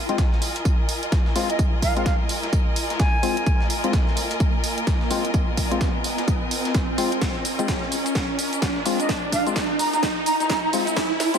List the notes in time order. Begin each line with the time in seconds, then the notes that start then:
Already playing: F4 A#4 D#5 G#5, riser
0.09 G#3 C4 F4, closed hi-hat
0.18 kick, snare, closed hi-hat, tambourine
0.32 snare
0.42 open hi-hat, tambourine
0.56 closed hi-hat
0.65 kick, closed hi-hat, tambourine
0.89 open hi-hat, tambourine
1.03 closed hi-hat
1.12 kick, snare, closed hi-hat, tambourine
1.26 snare
1.36 G#3 C4 F4, snare, open hi-hat, tambourine
1.50 D#5, closed hi-hat
1.59 kick, closed hi-hat, tambourine
1.82 F5, kick, open hi-hat, tambourine
1.96 G#3 C4 F4 F5, closed hi-hat
2.06 F5, kick, snare, closed hi-hat, tambourine
2.29 open hi-hat, tambourine
2.43 snare, closed hi-hat
2.53 kick, closed hi-hat, tambourine
2.76 open hi-hat, tambourine
2.90 snare, closed hi-hat
3.00 G#5, kick, snare, closed hi-hat, tambourine
3.23 G#3 C4 F4, open hi-hat, tambourine
3.37 closed hi-hat
3.46 kick, closed hi-hat, tambourine
3.61 snare
3.70 open hi-hat, tambourine
3.84 G#3 C4 F4, closed hi-hat
3.93 kick, snare, closed hi-hat, tambourine
4.07 snare
4.17 open hi-hat, tambourine
4.31 closed hi-hat
4.40 kick, closed hi-hat, tambourine
4.64 open hi-hat, tambourine
4.78 closed hi-hat
4.87 kick, snare, closed hi-hat, tambourine
5.01 snare
5.11 G#3 C4 F4, snare, open hi-hat, tambourine
5.25 closed hi-hat
5.34 kick, closed hi-hat, tambourine
5.57 kick, open hi-hat, tambourine
5.71 G#3 C4 F4, closed hi-hat
5.81 kick, snare, closed hi-hat, tambourine
6.04 open hi-hat, tambourine
6.18 snare, closed hi-hat
6.28 kick, closed hi-hat, tambourine
6.51 open hi-hat, tambourine
6.65 snare, closed hi-hat
6.75 kick, snare, closed hi-hat, tambourine
6.98 G#3 C4 F4, open hi-hat, tambourine
7.12 closed hi-hat
7.21 kick, snare, closed hi-hat, tambourine, shaker
7.36 snare
7.45 open hi-hat, tambourine, shaker
7.59 G#3 C4 F4, closed hi-hat, shaker
7.68 kick, snare, closed hi-hat, tambourine, shaker
7.82 snare
7.92 open hi-hat, tambourine, shaker
8.06 closed hi-hat, shaker
8.15 kick, snare, closed hi-hat, tambourine, shaker
8.39 open hi-hat, tambourine, shaker
8.53 closed hi-hat, shaker
8.62 kick, snare, closed hi-hat, tambourine, shaker
8.76 snare
8.86 G#3 C4 F4, snare, open hi-hat, tambourine, shaker
9.00 D#5, closed hi-hat, shaker
9.09 kick, snare, closed hi-hat, tambourine, shaker
9.32 F5, kick, open hi-hat, tambourine, shaker
9.47 G#3 C4 F4, closed hi-hat, shaker
9.56 kick, snare, closed hi-hat, tambourine, shaker
9.79 A#5, open hi-hat, tambourine, shaker
9.93 A#5, snare, closed hi-hat, shaker
10.03 kick, snare, closed hi-hat, tambourine, shaker
10.26 A#5, open hi-hat, tambourine, shaker
10.40 A#5, snare, closed hi-hat, shaker
10.50 A#5, kick, snare, closed hi-hat, tambourine, shaker
10.64 A#5
10.73 G#3 C4 F4, open hi-hat, tambourine, shaker
10.87 closed hi-hat, shaker
10.96 kick, snare, closed hi-hat, tambourine, shaker
11.11 snare
11.20 snare, open hi-hat, tambourine, shaker
11.34 G#3 C4 F4, closed hi-hat, shaker